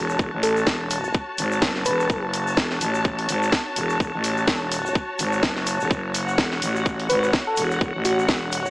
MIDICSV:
0, 0, Header, 1, 5, 480
1, 0, Start_track
1, 0, Key_signature, 3, "minor"
1, 0, Tempo, 476190
1, 195, Time_signature, 4, 2, 24, 8
1, 8770, End_track
2, 0, Start_track
2, 0, Title_t, "String section"
2, 0, Program_c, 0, 48
2, 0, Note_on_c, 0, 66, 89
2, 0, Note_on_c, 0, 73, 81
2, 0, Note_on_c, 0, 81, 84
2, 6290, Note_on_c, 0, 78, 82
2, 6318, Note_off_c, 0, 81, 0
2, 8770, Note_off_c, 0, 66, 0
2, 8770, Note_off_c, 0, 73, 0
2, 8770, Note_off_c, 0, 78, 0
2, 8770, End_track
3, 0, Start_track
3, 0, Title_t, "Soft synth lead"
3, 0, Program_c, 1, 80
3, 434, Note_on_c, 1, 69, 94
3, 602, Note_off_c, 1, 69, 0
3, 1872, Note_on_c, 1, 71, 92
3, 2251, Note_off_c, 1, 71, 0
3, 7151, Note_on_c, 1, 71, 93
3, 7241, Note_off_c, 1, 71, 0
3, 7289, Note_on_c, 1, 71, 80
3, 7356, Note_off_c, 1, 71, 0
3, 7531, Note_on_c, 1, 69, 93
3, 7673, Note_off_c, 1, 69, 0
3, 8115, Note_on_c, 1, 66, 96
3, 8282, Note_off_c, 1, 66, 0
3, 8770, End_track
4, 0, Start_track
4, 0, Title_t, "FM bass"
4, 0, Program_c, 2, 39
4, 0, Note_on_c, 2, 28, 99
4, 177, Note_off_c, 2, 28, 0
4, 194, Note_on_c, 2, 28, 96
4, 310, Note_off_c, 2, 28, 0
4, 331, Note_on_c, 2, 33, 100
4, 657, Note_off_c, 2, 33, 0
4, 674, Note_on_c, 2, 28, 97
4, 1138, Note_off_c, 2, 28, 0
4, 1394, Note_on_c, 2, 32, 101
4, 1618, Note_off_c, 2, 32, 0
4, 1634, Note_on_c, 2, 30, 101
4, 1858, Note_off_c, 2, 30, 0
4, 1875, Note_on_c, 2, 28, 102
4, 2098, Note_off_c, 2, 28, 0
4, 2114, Note_on_c, 2, 30, 92
4, 2578, Note_off_c, 2, 30, 0
4, 2594, Note_on_c, 2, 28, 97
4, 2817, Note_off_c, 2, 28, 0
4, 2833, Note_on_c, 2, 33, 99
4, 3297, Note_off_c, 2, 33, 0
4, 3312, Note_on_c, 2, 32, 105
4, 3537, Note_off_c, 2, 32, 0
4, 3792, Note_on_c, 2, 28, 100
4, 4017, Note_off_c, 2, 28, 0
4, 4033, Note_on_c, 2, 28, 90
4, 4149, Note_off_c, 2, 28, 0
4, 4170, Note_on_c, 2, 33, 105
4, 4497, Note_off_c, 2, 33, 0
4, 4513, Note_on_c, 2, 28, 98
4, 4977, Note_off_c, 2, 28, 0
4, 5231, Note_on_c, 2, 32, 97
4, 5456, Note_off_c, 2, 32, 0
4, 5473, Note_on_c, 2, 30, 95
4, 5830, Note_off_c, 2, 30, 0
4, 5850, Note_on_c, 2, 28, 102
4, 5937, Note_off_c, 2, 28, 0
4, 5953, Note_on_c, 2, 30, 93
4, 6417, Note_off_c, 2, 30, 0
4, 6434, Note_on_c, 2, 28, 96
4, 6657, Note_off_c, 2, 28, 0
4, 6673, Note_on_c, 2, 33, 102
4, 7137, Note_off_c, 2, 33, 0
4, 7153, Note_on_c, 2, 32, 101
4, 7377, Note_off_c, 2, 32, 0
4, 7633, Note_on_c, 2, 28, 103
4, 7857, Note_off_c, 2, 28, 0
4, 7873, Note_on_c, 2, 28, 99
4, 7989, Note_off_c, 2, 28, 0
4, 8010, Note_on_c, 2, 33, 98
4, 8337, Note_off_c, 2, 33, 0
4, 8353, Note_on_c, 2, 28, 99
4, 8770, Note_off_c, 2, 28, 0
4, 8770, End_track
5, 0, Start_track
5, 0, Title_t, "Drums"
5, 95, Note_on_c, 9, 82, 50
5, 194, Note_off_c, 9, 82, 0
5, 194, Note_on_c, 9, 36, 125
5, 194, Note_on_c, 9, 82, 41
5, 295, Note_off_c, 9, 36, 0
5, 295, Note_off_c, 9, 82, 0
5, 434, Note_on_c, 9, 46, 111
5, 436, Note_on_c, 9, 82, 87
5, 534, Note_off_c, 9, 46, 0
5, 536, Note_off_c, 9, 82, 0
5, 569, Note_on_c, 9, 82, 47
5, 670, Note_off_c, 9, 82, 0
5, 672, Note_on_c, 9, 38, 127
5, 672, Note_on_c, 9, 82, 42
5, 674, Note_on_c, 9, 36, 125
5, 772, Note_off_c, 9, 38, 0
5, 773, Note_off_c, 9, 82, 0
5, 775, Note_off_c, 9, 36, 0
5, 912, Note_on_c, 9, 82, 89
5, 914, Note_on_c, 9, 46, 118
5, 1013, Note_off_c, 9, 82, 0
5, 1015, Note_off_c, 9, 46, 0
5, 1048, Note_on_c, 9, 82, 55
5, 1149, Note_off_c, 9, 82, 0
5, 1149, Note_on_c, 9, 82, 43
5, 1154, Note_on_c, 9, 36, 127
5, 1250, Note_off_c, 9, 82, 0
5, 1255, Note_off_c, 9, 36, 0
5, 1392, Note_on_c, 9, 82, 91
5, 1394, Note_on_c, 9, 46, 110
5, 1492, Note_off_c, 9, 82, 0
5, 1495, Note_off_c, 9, 46, 0
5, 1530, Note_on_c, 9, 82, 58
5, 1631, Note_off_c, 9, 82, 0
5, 1632, Note_on_c, 9, 38, 127
5, 1634, Note_on_c, 9, 36, 127
5, 1643, Note_on_c, 9, 82, 41
5, 1732, Note_off_c, 9, 38, 0
5, 1735, Note_off_c, 9, 36, 0
5, 1744, Note_off_c, 9, 82, 0
5, 1770, Note_on_c, 9, 38, 37
5, 1867, Note_on_c, 9, 82, 103
5, 1871, Note_off_c, 9, 38, 0
5, 1874, Note_on_c, 9, 46, 114
5, 1968, Note_off_c, 9, 82, 0
5, 1975, Note_off_c, 9, 46, 0
5, 2017, Note_on_c, 9, 82, 56
5, 2113, Note_off_c, 9, 82, 0
5, 2113, Note_on_c, 9, 82, 42
5, 2114, Note_on_c, 9, 36, 124
5, 2214, Note_off_c, 9, 82, 0
5, 2215, Note_off_c, 9, 36, 0
5, 2354, Note_on_c, 9, 46, 112
5, 2359, Note_on_c, 9, 82, 92
5, 2455, Note_off_c, 9, 46, 0
5, 2460, Note_off_c, 9, 82, 0
5, 2492, Note_on_c, 9, 82, 52
5, 2589, Note_off_c, 9, 82, 0
5, 2589, Note_on_c, 9, 82, 42
5, 2592, Note_on_c, 9, 38, 123
5, 2594, Note_on_c, 9, 36, 127
5, 2690, Note_off_c, 9, 82, 0
5, 2693, Note_off_c, 9, 38, 0
5, 2694, Note_off_c, 9, 36, 0
5, 2729, Note_on_c, 9, 38, 39
5, 2830, Note_off_c, 9, 38, 0
5, 2831, Note_on_c, 9, 82, 89
5, 2834, Note_on_c, 9, 46, 112
5, 2932, Note_off_c, 9, 82, 0
5, 2935, Note_off_c, 9, 46, 0
5, 2967, Note_on_c, 9, 82, 55
5, 3067, Note_off_c, 9, 82, 0
5, 3069, Note_on_c, 9, 82, 46
5, 3074, Note_on_c, 9, 36, 127
5, 3170, Note_off_c, 9, 82, 0
5, 3174, Note_off_c, 9, 36, 0
5, 3212, Note_on_c, 9, 46, 64
5, 3312, Note_off_c, 9, 46, 0
5, 3314, Note_on_c, 9, 46, 119
5, 3317, Note_on_c, 9, 82, 91
5, 3415, Note_off_c, 9, 46, 0
5, 3418, Note_off_c, 9, 82, 0
5, 3454, Note_on_c, 9, 82, 59
5, 3551, Note_on_c, 9, 38, 126
5, 3554, Note_on_c, 9, 36, 127
5, 3555, Note_off_c, 9, 82, 0
5, 3556, Note_on_c, 9, 82, 40
5, 3652, Note_off_c, 9, 38, 0
5, 3654, Note_off_c, 9, 36, 0
5, 3656, Note_off_c, 9, 82, 0
5, 3793, Note_on_c, 9, 46, 116
5, 3796, Note_on_c, 9, 82, 92
5, 3894, Note_off_c, 9, 46, 0
5, 3896, Note_off_c, 9, 82, 0
5, 3929, Note_on_c, 9, 82, 60
5, 4029, Note_off_c, 9, 82, 0
5, 4033, Note_on_c, 9, 36, 125
5, 4041, Note_on_c, 9, 82, 44
5, 4134, Note_off_c, 9, 36, 0
5, 4142, Note_off_c, 9, 82, 0
5, 4273, Note_on_c, 9, 46, 107
5, 4275, Note_on_c, 9, 82, 91
5, 4374, Note_off_c, 9, 46, 0
5, 4376, Note_off_c, 9, 82, 0
5, 4408, Note_on_c, 9, 82, 51
5, 4508, Note_off_c, 9, 82, 0
5, 4511, Note_on_c, 9, 38, 118
5, 4512, Note_on_c, 9, 82, 40
5, 4513, Note_on_c, 9, 36, 127
5, 4612, Note_off_c, 9, 38, 0
5, 4613, Note_off_c, 9, 82, 0
5, 4614, Note_off_c, 9, 36, 0
5, 4753, Note_on_c, 9, 46, 116
5, 4756, Note_on_c, 9, 82, 84
5, 4854, Note_off_c, 9, 46, 0
5, 4857, Note_off_c, 9, 82, 0
5, 4899, Note_on_c, 9, 82, 56
5, 4993, Note_off_c, 9, 82, 0
5, 4993, Note_on_c, 9, 36, 126
5, 4993, Note_on_c, 9, 82, 39
5, 5094, Note_off_c, 9, 36, 0
5, 5094, Note_off_c, 9, 82, 0
5, 5232, Note_on_c, 9, 82, 99
5, 5233, Note_on_c, 9, 46, 112
5, 5333, Note_off_c, 9, 82, 0
5, 5334, Note_off_c, 9, 46, 0
5, 5368, Note_on_c, 9, 82, 55
5, 5469, Note_off_c, 9, 82, 0
5, 5471, Note_on_c, 9, 38, 119
5, 5471, Note_on_c, 9, 82, 44
5, 5473, Note_on_c, 9, 36, 124
5, 5572, Note_off_c, 9, 38, 0
5, 5572, Note_off_c, 9, 82, 0
5, 5574, Note_off_c, 9, 36, 0
5, 5609, Note_on_c, 9, 38, 36
5, 5710, Note_off_c, 9, 38, 0
5, 5711, Note_on_c, 9, 82, 107
5, 5713, Note_on_c, 9, 46, 110
5, 5812, Note_off_c, 9, 82, 0
5, 5814, Note_off_c, 9, 46, 0
5, 5851, Note_on_c, 9, 82, 57
5, 5951, Note_off_c, 9, 82, 0
5, 5954, Note_on_c, 9, 36, 123
5, 5957, Note_on_c, 9, 82, 41
5, 6054, Note_off_c, 9, 36, 0
5, 6058, Note_off_c, 9, 82, 0
5, 6194, Note_on_c, 9, 46, 109
5, 6196, Note_on_c, 9, 82, 96
5, 6295, Note_off_c, 9, 46, 0
5, 6297, Note_off_c, 9, 82, 0
5, 6332, Note_on_c, 9, 82, 54
5, 6432, Note_on_c, 9, 38, 117
5, 6433, Note_off_c, 9, 82, 0
5, 6433, Note_on_c, 9, 36, 122
5, 6437, Note_on_c, 9, 82, 41
5, 6532, Note_off_c, 9, 38, 0
5, 6534, Note_off_c, 9, 36, 0
5, 6537, Note_off_c, 9, 82, 0
5, 6569, Note_on_c, 9, 38, 36
5, 6670, Note_off_c, 9, 38, 0
5, 6673, Note_on_c, 9, 46, 111
5, 6678, Note_on_c, 9, 82, 91
5, 6774, Note_off_c, 9, 46, 0
5, 6779, Note_off_c, 9, 82, 0
5, 6813, Note_on_c, 9, 82, 53
5, 6913, Note_on_c, 9, 36, 124
5, 6914, Note_off_c, 9, 82, 0
5, 6915, Note_on_c, 9, 82, 40
5, 7014, Note_off_c, 9, 36, 0
5, 7016, Note_off_c, 9, 82, 0
5, 7052, Note_on_c, 9, 46, 63
5, 7153, Note_off_c, 9, 46, 0
5, 7154, Note_on_c, 9, 46, 110
5, 7154, Note_on_c, 9, 82, 88
5, 7255, Note_off_c, 9, 46, 0
5, 7255, Note_off_c, 9, 82, 0
5, 7292, Note_on_c, 9, 82, 51
5, 7391, Note_off_c, 9, 82, 0
5, 7391, Note_on_c, 9, 38, 111
5, 7391, Note_on_c, 9, 82, 39
5, 7393, Note_on_c, 9, 36, 124
5, 7492, Note_off_c, 9, 38, 0
5, 7492, Note_off_c, 9, 82, 0
5, 7494, Note_off_c, 9, 36, 0
5, 7627, Note_on_c, 9, 82, 95
5, 7634, Note_on_c, 9, 46, 110
5, 7728, Note_off_c, 9, 82, 0
5, 7735, Note_off_c, 9, 46, 0
5, 7773, Note_on_c, 9, 82, 52
5, 7873, Note_on_c, 9, 36, 116
5, 7874, Note_off_c, 9, 82, 0
5, 7880, Note_on_c, 9, 82, 36
5, 7974, Note_off_c, 9, 36, 0
5, 7981, Note_off_c, 9, 82, 0
5, 8113, Note_on_c, 9, 82, 85
5, 8114, Note_on_c, 9, 46, 109
5, 8214, Note_off_c, 9, 82, 0
5, 8215, Note_off_c, 9, 46, 0
5, 8255, Note_on_c, 9, 82, 44
5, 8352, Note_off_c, 9, 82, 0
5, 8352, Note_on_c, 9, 38, 114
5, 8352, Note_on_c, 9, 82, 41
5, 8354, Note_on_c, 9, 36, 117
5, 8452, Note_off_c, 9, 38, 0
5, 8453, Note_off_c, 9, 82, 0
5, 8454, Note_off_c, 9, 36, 0
5, 8589, Note_on_c, 9, 82, 92
5, 8594, Note_on_c, 9, 46, 108
5, 8690, Note_off_c, 9, 82, 0
5, 8695, Note_off_c, 9, 46, 0
5, 8725, Note_on_c, 9, 82, 50
5, 8770, Note_off_c, 9, 82, 0
5, 8770, End_track
0, 0, End_of_file